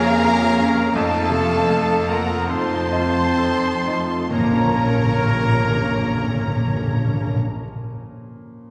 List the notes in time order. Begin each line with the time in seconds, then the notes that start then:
Already playing: F2 C#3 A#3 C#4 F4 G#4 A#4 C#5 F5 A#5
0.24 C#4 F4 A#4
0.58 A#3 C#4
0.93 F2 A3 C4 D#4 A4 F5 A5
1.30 C3 A3 F4
1.68 A3 C4 D#4
2.06 A3 A#3 F4 A#4 F#5 A#5
2.47 F2 C4 D#4 F4 A4 C5 A5 C6
2.92 A3 F4 D#5
3.38 C4 D#4 A4
3.87 A3 D#4 F4
4.31 A#1 A#2 A#3 C#4 A#4 C#5 A#5
4.38 A#2 F3
4.45 A#2 A#3
4.52 A#2 C#4
4.58 A#2 A#4
4.64 A#2
4.71 A#2
4.78 A#2
4.85 A#2
4.92 A#2
4.98 A#2
5.05 A#2
5.11 A#2
5.17 A#2
5.24 A#2
5.30 A#2
5.37 A#2
5.43 A#2
5.50 A#2
5.57 A#2
5.63 A#2
5.69 A#2
5.76 A#2
5.82 A#2
5.89 A#2
5.95 A#2
6.02 A#2
6.07 A#2
6.14 A#2
6.21 A#2
6.27 A#2
6.34 A#2
6.41 A#2
6.47 A#2
6.54 A#2
6.61 A#2
6.68 A#2
6.74 A#2
6.80 A#2
6.87 A#2
6.93 A#2
7.00 A#2
7.07 A#2
7.14 A#2
7.20 A#2
7.27 A#2
7.33 A#2